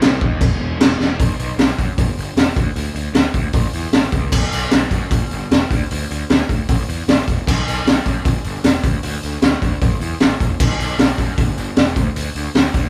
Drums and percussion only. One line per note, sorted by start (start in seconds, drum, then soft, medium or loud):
0.02 snare loud
0.02 crash medium
0.21 kick medium
0.41 kick loud
0.41 crash medium
0.81 snare loud
0.81 crash medium
1.00 snare medium
1.19 kick loud
1.19 open hi-hat medium
1.39 open hi-hat medium
1.59 snare loud
1.59 open hi-hat medium
1.79 kick medium
1.79 open hi-hat medium
1.98 kick loud
1.98 open hi-hat medium
2.18 open hi-hat medium
2.37 snare loud
2.37 open hi-hat medium
2.56 kick loud
2.56 open hi-hat medium
2.76 open hi-hat medium
2.96 open hi-hat medium
3.15 snare loud
3.15 open hi-hat medium
3.34 kick medium
3.34 open hi-hat medium
3.53 kick loud
3.53 open hi-hat medium
3.73 open hi-hat medium
3.93 snare loud
3.93 open hi-hat medium
4.12 kick medium
4.12 open hi-hat medium
4.32 kick loud
4.32 crash loud
4.52 open hi-hat medium
4.71 snare loud
4.71 open hi-hat medium
4.91 kick medium
4.91 open hi-hat medium
5.11 kick loud
5.11 open hi-hat medium
5.31 open hi-hat medium
5.51 snare loud
5.51 open hi-hat medium
5.71 kick loud
5.71 open hi-hat medium
5.91 open hi-hat medium
6.11 open hi-hat medium
6.30 snare loud
6.30 open hi-hat medium
6.49 kick medium
6.49 open hi-hat medium
6.69 kick loud
6.69 open hi-hat medium
6.89 open hi-hat medium
7.08 snare loud
7.08 open hi-hat medium
7.28 kick medium
7.28 open hi-hat medium
7.47 kick loud
7.47 crash medium
7.68 open hi-hat medium
7.87 snare loud
7.87 open hi-hat medium
8.06 kick medium
8.06 open hi-hat medium
8.25 kick loud
8.25 open hi-hat medium
8.44 open hi-hat medium
8.64 snare loud
8.64 open hi-hat medium
8.84 kick loud
8.84 open hi-hat medium
9.03 open hi-hat medium
9.23 open hi-hat medium
9.42 snare loud
9.42 open hi-hat medium
9.62 kick medium
9.62 open hi-hat soft
9.81 kick loud
9.81 open hi-hat medium
10.01 open hi-hat medium
10.20 snare loud
10.20 open hi-hat medium
10.40 kick medium
10.40 open hi-hat medium
10.60 kick loud
10.60 crash loud
10.80 open hi-hat medium
10.99 snare loud
10.99 open hi-hat medium
11.18 kick medium
11.18 open hi-hat medium
11.38 kick loud
11.38 open hi-hat medium
11.58 open hi-hat medium
11.77 snare loud
11.77 open hi-hat medium
11.96 kick loud
11.96 open hi-hat medium
12.16 open hi-hat medium
12.35 open hi-hat medium
12.55 snare loud
12.55 open hi-hat medium
12.74 kick medium
12.74 open hi-hat medium